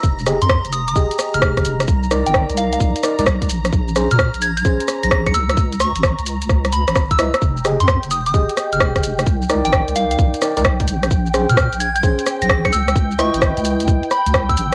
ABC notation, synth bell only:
X:1
M:4/4
L:1/16
Q:"Swing 16ths" 1/4=130
K:Fm
V:1 name="Synth bell"
z3 c' c' z e' e' z3 f' z4 | z3 g z2 f f z8 | z3 f' f' z a' a' z3 b' b' d'' _f' f' | z2 d' z6 z _c' z2 _f'3 |
z3 c' c' z e' e' z3 f' z4 | z3 g z2 f f z8 | z3 f' f' z a' a' z3 b' b' d'' _f' f' | z2 d' z6 z _c' z2 _f'3 |]